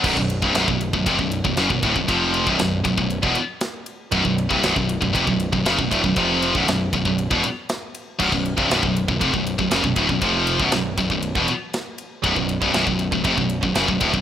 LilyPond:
<<
  \new Staff \with { instrumentName = "Distorted electric guitar" } { \clef bass \time 4/4 \key b \minor \tempo 4 = 118 <b,, fis,>16 <b,, fis,>8 <c, g,>16 <b,, fis,>16 <b,, fis,>8 <b,, fis,>16 <eis, c>16 <b,, fis,>8 <b,, fis,>16 <fis, cis>16 <b,, fis,>16 <d, a,>16 <b,, fis,>16 | <eis, c eis>8. <b,, fis,>16 <b,, fis,>8 <b,, fis,>16 <b,, fis,>8 <e, b,>16 r4. | <b,, fis,>16 <b,, fis,>8 <c, g,>16 <b,, fis,>16 <b,, fis,>8 <b,, fis,>16 <eis, c>16 <b,, fis,>8 <b,, fis,>16 <fis, cis>16 <b,, fis,>16 <d, a,>16 <b,, fis,>16 | <eis, c eis>8. <b,, fis,>16 <b,, fis,>8 <b,, fis,>16 <b,, fis,>8 <e, b,>16 r4. |
<b,, fis,>16 <b,, fis,>8 <c, g,>16 <b,, fis,>16 <b,, fis,>8 <b,, fis,>16 <eis, c>16 <b,, fis,>8 <b,, fis,>16 <fis, cis>16 <b,, fis,>16 <d, a,>16 <b,, fis,>16 | <eis, c eis>8. <b,, fis,>16 <b,, fis,>8 <b,, fis,>16 <b,, fis,>8 <e, b,>16 r4. | <b,, fis,>16 <b,, fis,>8 <c, g,>16 <b,, fis,>16 <b,, fis,>8 <b,, fis,>16 <eis, c>16 <b,, fis,>8 <b,, fis,>16 <fis, cis>16 <b,, fis,>16 <d, a,>16 <b,, fis,>16 | }
  \new Staff \with { instrumentName = "Distorted electric guitar" } { \clef bass \time 4/4 \key b \minor <b,, fis,>16 <b,, fis,>8 <c, g,>16 <b,, fis,>16 <b,, fis,>8 <b,, fis,>16 <eis, c>16 <b,, fis,>8 <b,, fis,>16 <fis, cis>16 <b,, fis,>16 <d, a,>16 <b,, fis,>16 | <eis, c eis>8. <b,, fis,>16 <b,, fis,>8 <b,, fis,>16 <b,, fis,>8 <e, b,>16 r4. | <b,, fis,>16 <b,, fis,>8 <c, g,>16 <b,, fis,>16 <b,, fis,>8 <b,, fis,>16 <eis, c>16 <b,, fis,>8 <b,, fis,>16 <fis, cis>16 <b,, fis,>16 <d, a,>16 <b,, fis,>16 | <eis, c eis>8. <b,, fis,>16 <b,, fis,>8 <b,, fis,>16 <b,, fis,>8 <e, b,>16 r4. |
<b,, fis,>16 <b,, fis,>8 <c, g,>16 <b,, fis,>16 <b,, fis,>8 <b,, fis,>16 <eis, c>16 <b,, fis,>8 <b,, fis,>16 <fis, cis>16 <b,, fis,>16 <d, a,>16 <b,, fis,>16 | <eis, c eis>8. <b,, fis,>16 <b,, fis,>8 <b,, fis,>16 <b,, fis,>8 <e, b,>16 r4. | <b,, fis,>16 <b,, fis,>8 <c, g,>16 <b,, fis,>16 <b,, fis,>8 <b,, fis,>16 <eis, c>16 <b,, fis,>8 <b,, fis,>16 <fis, cis>16 <b,, fis,>16 <d, a,>16 <b,, fis,>16 | }
  \new Staff \with { instrumentName = "Distorted electric guitar" } { \clef bass \time 4/4 \key b \minor <b,, fis,>16 <b,, fis,>8 <c, g,>16 <b,, fis,>16 <b,, fis,>8 <b,, fis,>16 <eis, c>16 <b,, fis,>8 <b,, fis,>16 <fis, cis>16 <b,, fis,>16 <d, a,>16 <b,, fis,>16 | <eis, c eis>8. <b,, fis,>16 <b,, fis,>8 <b,, fis,>16 <b,, fis,>8 <e, b,>16 r4. | <b,, fis,>16 <b,, fis,>8 <c, g,>16 <b,, fis,>16 <b,, fis,>8 <b,, fis,>16 <eis, c>16 <b,, fis,>8 <b,, fis,>16 <fis, cis>16 <b,, fis,>16 <d, a,>16 <b,, fis,>16 | <eis, c eis>8. <b,, fis,>16 <b,, fis,>8 <b,, fis,>16 <b,, fis,>8 <e, b,>16 r4. |
<b,, fis,>16 <b,, fis,>8 <c, g,>16 <b,, fis,>16 <b,, fis,>8 <b,, fis,>16 <eis, c>16 <b,, fis,>8 <b,, fis,>16 <fis, cis>16 <b,, fis,>16 <d, a,>16 <b,, fis,>16 | <eis, c eis>8. <b,, fis,>16 <b,, fis,>8 <b,, fis,>16 <b,, fis,>8 <e, b,>16 r4. | <b,, fis,>16 <b,, fis,>8 <c, g,>16 <b,, fis,>16 <b,, fis,>8 <b,, fis,>16 <eis, c>16 <b,, fis,>8 <b,, fis,>16 <fis, cis>16 <b,, fis,>16 <d, a,>16 <b,, fis,>16 | }
  \new Staff \with { instrumentName = "Picked electric bass" } { \clef bass \time 4/4 \key b \minor b,,,16 b,,,8 c,,16 b,,,16 b,,,8 b,,,16 eis,,16 b,,,8 b,,,16 fis,,16 b,,,16 d,,16 b,,,16 | eis,,8. b,,,16 b,,,8 b,,,16 b,,,8 e,,16 r4. | b,,,16 b,,,8 c,,16 b,,,16 b,,,8 b,,,16 eis,,16 b,,,8 b,,,16 fis,,16 b,,,16 d,,16 b,,,16 | eis,,8. b,,,16 b,,,8 b,,,16 b,,,8 e,,16 r4. |
b,,,16 b,,,8 c,,16 b,,,16 b,,,8 b,,,16 eis,,16 b,,,8 b,,,16 fis,,16 b,,,16 d,,16 b,,,16 | eis,,8. b,,,16 b,,,8 b,,,16 b,,,8 e,,16 r4. | b,,,16 b,,,8 c,,16 b,,,16 b,,,8 b,,,16 eis,,16 b,,,8 b,,,16 fis,,16 b,,,16 d,,16 b,,,16 | }
  \new DrumStaff \with { instrumentName = "Drums" } \drummode { \time 4/4 <cymc bd>16 bd16 cymr16 bd16 <cymr sn>16 bd16 cymr16 bd16 <bd cymr>16 bd16 cymr16 bd16 <cymr sn>16 bd16 <bd cymr>16 bd16 | <bd cymr>8 cymr16 bd16 <cymr sn>8 <bd cymr>16 bd16 cymr16 bd16 cymr8 <cymr sn>8 cymr8 | <bd cymr>16 bd16 cymr16 bd16 <cymr sn>16 bd16 cymr16 bd16 <bd cymr>16 bd16 cymr16 bd16 <cymr sn>16 bd16 <bd cymr>16 bd16 | <bd cymr>8 cymr16 bd16 <cymr sn>8 <bd cymr>16 bd16 cymr16 bd16 cymr8 <cymr sn>8 cymr8 |
<cymc bd>16 bd16 cymr16 bd16 <cymr sn>16 bd16 cymr16 bd16 <bd cymr>16 bd16 cymr16 bd16 <cymr sn>16 bd16 <bd cymr>16 bd16 | <bd cymr>8 cymr16 bd16 <cymr sn>8 <bd cymr>16 bd16 cymr16 bd16 cymr8 <cymr sn>8 cymr8 | <bd cymr>16 bd16 cymr16 bd16 <cymr sn>16 bd16 cymr16 bd16 <bd cymr>16 bd16 cymr16 bd16 <cymr sn>16 bd16 <bd cymr>16 bd16 | }
>>